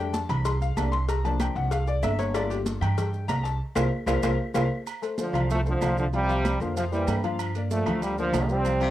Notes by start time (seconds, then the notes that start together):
Already playing: F2 G3 A3 D4 G5
0.13 A5, cowbell, high conga, maracas
0.29 C2 B5, cowbell, low conga, low agogo, claves, maracas
0.45 C6, cowbell, high conga, low agogo, maracas
0.61 F5, high conga, maracas
0.76 C2 G3 A3 D4 A5, cowbell, high conga, low timbale, low agogo, claves, maracas
0.92 C6, cowbell, maracas
1.08 A#5, cowbell, high conga, low agogo, maracas
1.24 F3 A#3 D4 A5, high conga, low agogo, maracas
1.40 G5, cowbell, high conga, low agogo, claves, maracas
1.55 C2 F#5, cowbell, maracas
1.71 F5, cowbell, high conga, low agogo, maracas
1.87 D5, high conga, maracas
2.03 G1 E5, cowbell, high conga, low timbale, low agogo, claves, maracas
2.19 C#5, cowbell, high conga, low agogo, maracas
2.34 A3 A#3 F4 D5, cowbell, low agogo, claves, maracas
2.50 G4, high conga, low agogo, maracas
2.66 cowbell, high conga, maracas
2.81 G2 G5, cowbell, low conga, low agogo, claves, maracas
2.98 cowbell, high conga, low conga, low agogo, maracas
3.14 high conga, maracas
3.28 C2 A#5, cowbell, high conga, low timbale, low agogo, claves, maracas
3.44 A5, cowbell, high conga, maracas
3.75 C2 A#4 C5 F5, cowbell, high conga, high timbale, claves, maracas
4.06 C2 A#4 C5 F5, cowbell, high conga, high timbale, claves, maracas
4.22 C2 A#4 C5 F5, cowbell, high conga, high timbale, claves, maracas
4.54 C2 A#4 C5 F5, cowbell, high conga, high timbale, claves, maracas
4.87 high conga, low agogo, claves, maracas
5.02 A3 A4 C5, high conga, low agogo, maracas
5.18 D3 F3 A3 A4 C5, high conga, maracas
5.33 C2 F3 F4 F5, low conga, low agogo, claves, maracas
5.50 F3 A3, high conga, low agogo, maracas
5.65 D3 F3 A3 A4 C5, high conga, maracas
5.81 C2 F3 F4 F5, high conga, low timbale, low agogo, claves, maracas
5.97 D3 F3, high conga, maracas
6.13 C3 F3 G3 F4 F5, high conga, low agogo, maracas
6.28 F3 F4 F5, high conga, low agogo, maracas
6.44 high conga, low agogo, claves, maracas
6.60 F2 D3 F3 A#3 A#4 C5, maracas
6.76 C3 F3 F4 F5, high conga, low agogo, maracas
6.92 E3 G3 A#3 A#4 C5, high conga, maracas
7.07 G2, high conga, low timbale, low agogo, claves, maracas
7.24 F3 F4 F5, high conga, low agogo, maracas
7.39 high conga, low agogo, claves, maracas
7.55 A#3 A#4 D5, high conga, low agogo, maracas
7.71 F3 A3 A#3 A#4 D5, high conga, maracas
7.86 D2 F3 F4 F5, low conga, low agogo, claves, maracas
8.02 D3 G3, high conga, low agogo, maracas
8.18 D3 F3 A#3 A#4 D5, high conga, maracas
8.32 C2 F3 F4 F5, high conga, low timbale, low agogo, claves, maracas
8.49 G3 C4, maracas
8.65 F3 F4 F5, high conga, low agogo, maracas
8.80 C3 F3 F4 F5, high conga, low agogo, maracas